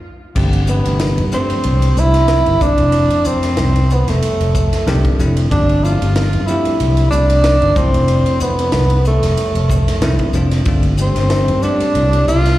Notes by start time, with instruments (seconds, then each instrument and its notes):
0.35 fretless electric bass G1, tine electric piano F3 A3 C4 D4 G4, kick, crash
0.53 ride
0.67 tine electric piano F3 A3 C4 D4 G4, tenor saxophone B3, hi-hat pedal
0.85 fretless electric bass G1, tine electric piano C3 F3 A3 D4 G4, ride
1.00 snare, ride
1.18 fretless electric bass G2, ride
1.32 tine electric piano F3 A3 C4 D4 G4, tenor saxophone C4, hi-hat pedal
1.50 muted fretless electric bass stroke, ride
1.64 fretless electric bass C2, ride
1.82 ride
1.97 fretless electric bass C2, tine electric piano F3 A3 C4 D4 G4, tenor saxophone E4, hi-hat pedal
2.14 snare, ride
2.28 snare, ride
2.46 fretless electric bass G1, ride
2.60 tine electric piano F3 A3 C4 D4 E4, tenor saxophone D4, kick, hi-hat pedal
2.78 fretless electric bass F1, ride
2.92 ride
3.10 ride
3.25 fretless electric bass F2, tenor saxophone C4, hi-hat pedal
3.43 snare, ride
3.57 fretless electric bass C2, snare, ride
3.76 ride
3.90 tenor saxophone B3, hi-hat pedal
4.07 fretless electric bass F1, tenor saxophone A3, snare, ride
4.23 ride
4.40 fretless electric bass F1, ride
4.55 kick, hi-hat pedal
4.73 snare, ride
4.87 fretless electric bass C2, tine electric piano F3 A3 C4 D4 G4, snare, ride
5.05 kick, ride
5.19 fretless electric bass F1, tine electric piano F3 A3 C4 D4 E4, hi-hat pedal
5.37 ride
5.50 fretless electric bass G1, tine electric piano F3 A3 C4 D4 G4, tenor saxophone D4, kick, ride
5.69 ride
5.83 tine electric piano F3 A3 C4 D4 E4, tenor saxophone F4, hi-hat pedal
6.02 fretless electric bass G1, tine electric piano F3 A3 C4 D4 G4, ride
6.16 snare, ride
6.33 fretless electric bass G2, ride
6.47 tine electric piano F3 A3 C4 D4, tenor saxophone E4, hi-hat pedal
6.51 tine electric piano G4
6.65 muted fretless electric bass stroke, ride
6.80 fretless electric bass C2, ride
6.97 ride
7.11 fretless electric bass C2, tine electric piano F3 A3 C4 D4 F4, tenor saxophone D4, hi-hat pedal
7.30 ride
7.44 snare, ride
7.62 fretless electric bass G1, ride
7.76 tine electric piano C3 F3 A3 D4 E4, tenor saxophone C4, muted fretless electric bass stroke, kick, hi-hat pedal
7.94 fretless electric bass F1, ride
8.08 ride
8.26 ride
8.40 fretless electric bass F2, tenor saxophone B3, hi-hat pedal
8.59 ride
8.72 fretless electric bass C2, snare, ride
8.90 ride
9.05 tenor saxophone A3, hi-hat pedal
9.22 fretless electric bass F1, snare, ride
9.37 ride
9.55 fretless electric bass F1, ride
9.70 kick, hi-hat pedal
9.88 snare, ride
10.01 fretless electric bass C2, tine electric piano F3 A3 C4 D4 E4, snare, ride
10.19 kick, ride
10.33 fretless electric bass F1, tine electric piano F3 A3 C4 D4 F4, hi-hat pedal
10.51 snare, ride
10.65 fretless electric bass G1, tine electric piano G3 A3 C4 D4 F4, kick, ride
10.83 ride
10.97 tine electric piano G3 A3 C4 D4 G4, hi-hat pedal
11.01 tenor saxophone C4
11.16 fretless electric bass G1, tine electric piano G3 A3 C4 D4 G4, snare, ride
11.30 snare, ride
11.48 fretless electric bass G2, ride
11.62 tine electric piano G3 A3 C4 D4 G4, tenor saxophone D4, hi-hat pedal
11.80 muted fretless electric bass stroke, ride
11.95 fretless electric bass C2, ride
12.13 ride
12.27 fretless electric bass C2, tine electric piano G3 A3 C4 D4 F4, tenor saxophone F4, hi-hat pedal
12.46 snare, ride